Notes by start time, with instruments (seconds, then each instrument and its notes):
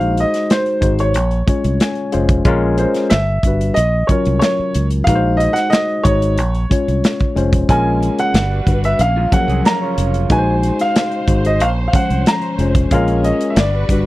Already playing: fingered electric bass A#1, tine electric piano G#3 D#4 F#4 C5, grand piano F5
0.01 closed hi-hat
0.17 grand piano D#5, closed hi-hat
0.34 snare, closed hi-hat
0.50 grand piano C5, snare, closed hi-hat
0.66 closed hi-hat
0.81 fingered electric bass G#1, tine electric piano G#3 D#4 F#4 C5, kick, closed hi-hat
0.99 grand piano C#5, closed hi-hat
1.14 fingered electric bass A#1, closed hi-hat
1.31 closed hi-hat
1.47 tine electric piano G#3 C#4 F4 C#5, muted fingered electric bass stroke, kick, closed hi-hat
1.64 fingered electric bass C2, closed hi-hat
1.80 tine electric piano G#5, snare, closed hi-hat
1.95 closed hi-hat
2.12 fingered electric bass F1, tine electric piano G#3 C#4 F4 C5 F5, closed hi-hat
2.29 kick, closed hi-hat
2.45 fingered electric bass A#1, tine electric piano G#3 C#4 F4 A#4, kick, closed hi-hat
2.78 grand piano C5, closed hi-hat
2.94 snare, closed hi-hat
3.10 fingered electric bass G1, grand piano E5, snare, closed hi-hat
3.43 fingered electric bass G1, tine electric piano G3 D4 F#4, kick, closed hi-hat
3.47 tine electric piano B4
3.61 closed hi-hat
3.74 fingered electric bass A#1, grand piano D#5, closed hi-hat
4.07 tine electric piano F#3 C#4 F4, grand piano C#5, muted fingered electric bass stroke, kick, closed hi-hat
4.12 tine electric piano A#4
4.25 fingered electric bass C2, closed hi-hat
4.39 grand piano C#5, snare, closed hi-hat
4.59 muted fingered electric bass stroke
4.74 fingered electric bass C#2, closed hi-hat
4.91 closed hi-hat
5.04 fingered electric bass A#1, tine electric piano G#3 D#4 F#4, grand piano F5, kick, closed hi-hat
5.09 tine electric piano B4
5.15 tine electric piano C5
5.37 grand piano D#5, closed hi-hat
5.53 grand piano F#5, snare, closed hi-hat
5.70 grand piano D#5, snare, closed hi-hat
6.03 fingered electric bass G#1, tine electric piano G#3 D#4 F#4 D#5, grand piano C#5, kick, closed hi-hat
6.22 closed hi-hat
6.38 fingered electric bass A#1, closed hi-hat
6.55 closed hi-hat
6.70 tine electric piano G#3 C#4 F4 C#5, muted fingered electric bass stroke, kick, closed hi-hat
6.88 fingered electric bass C2, closed hi-hat
7.04 snare, closed hi-hat
7.19 kick, closed hi-hat
7.36 fingered electric bass F1, tine electric piano G#3 C#4 F4 C5, closed hi-hat
7.53 kick, closed hi-hat
7.69 fingered electric bass A#1, string section C#3 G#3 A#3, tine electric piano G#3 C#4 F4 A#4, grand piano G#5, kick, closed hi-hat
8.03 closed hi-hat
8.19 grand piano F#5, closed hi-hat
8.34 fingered electric bass G1, string section G3 D4 F#4 B4, snare, closed hi-hat
8.66 fingered electric bass G1, tine electric piano G3 D4 F#4 B4, kick, closed hi-hat
8.84 grand piano E5, closed hi-hat
8.99 fingered electric bass A#1, string section C#3 A#3 C#4, grand piano F5, closed hi-hat
9.16 clean electric guitar G#3 F4
9.32 tine electric piano F3 F#3 C#4 G#4, clean electric guitar A#3 F#4, grand piano F#5, kick, closed hi-hat
9.40 tine electric piano A#4
9.48 fingered electric bass C2, clean electric guitar C4 G#4, closed hi-hat
9.65 clean electric guitar C#4 A#4, grand piano A#5, snare, closed hi-hat
9.81 clean electric guitar F4 C#5
9.98 fingered electric bass F1, closed hi-hat
10.14 closed hi-hat
10.30 fingered electric bass A#1, tine electric piano G#3 D#4 F#4 B4, string section G#3 C5, grand piano G#5, kick, closed hi-hat
10.38 tine electric piano C5
10.63 closed hi-hat
10.79 grand piano F5, snare, closed hi-hat
10.96 snare, closed hi-hat
11.12 closed hi-hat
11.27 fingered electric bass G#1, tine electric piano G#3 D#4 F#4 C5, kick, closed hi-hat
11.45 grand piano D#5, closed hi-hat
11.60 fingered electric bass A#1, string section F3 C#4, grand piano F5, closed hi-hat
11.88 grand piano F5
11.93 tine electric piano F3 G#3 C#4 C5, grand piano F#5, kick, closed hi-hat
12.10 fingered electric bass C2, closed hi-hat
12.26 grand piano A#5, snare, closed hi-hat
12.42 closed hi-hat
12.58 fingered electric bass F1, tine electric piano G#3 C#4 F4 C5, closed hi-hat
12.75 kick, closed hi-hat
12.90 fingered electric bass A#1, string section G#3 A#3 C#4, tine electric piano G#3 C#4 F4 A#4, grand piano F5, kick, closed hi-hat
13.08 closed hi-hat
13.24 grand piano D#5, closed hi-hat
13.41 closed hi-hat
13.50 grand piano E5
13.55 fingered electric bass G1, string section G3 D4 F#4 B4, grand piano D5, snare, closed hi-hat
13.89 fingered electric bass G1, tine electric piano G3 D4 F#4 B4, kick, closed hi-hat